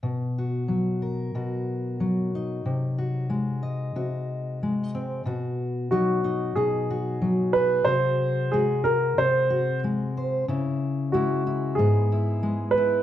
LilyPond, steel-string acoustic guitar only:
\new Staff \with { instrumentName = "Steel-string acoustic guitar" } { \time 4/4 \key b \major \tempo 4 = 92 << { r8 fis'4 ais'8 fis'4. dis'8 | r8 fis'4 dis''8 fis'4. bis8 | fis'4 dis'8 dis'8 dis'8 fis'4 gis'8 | fis'4 fis'8 fis'8 bis8 fis'4 bis'8 |
e'4 e'8 e'8 b8 e'4 e'8 | } \\ { b,4 fis4 b,4 fis4 | bis,4 gis4 bis,4 gis4 | b,4 fis4 b,4 fis4 | bis,4 gis4 bis,4 gis4 |
cis4 gis4 gis,4 gis4 | } >> }